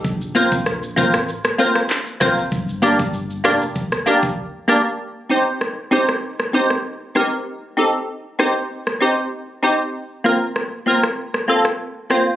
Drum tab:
HH |--x---x---x---x-|--x---x---x-----|----------------|----------------|
SH |xxxxxxxxxxxxxxxx|xxxxxxxxxxxx----|----------------|----------------|
CP |------------x---|----------------|----------------|----------------|
SD |----r--r-r-r--r-|------r--r------|----r--r-r-r--r-|------r--r------|
BD |o--o--o-------o-|o--o----o--o----|----------------|----------------|

HH |----------------|
SH |----------------|
CP |----------------|
SD |----r--r-r-r--r-|
BD |----------------|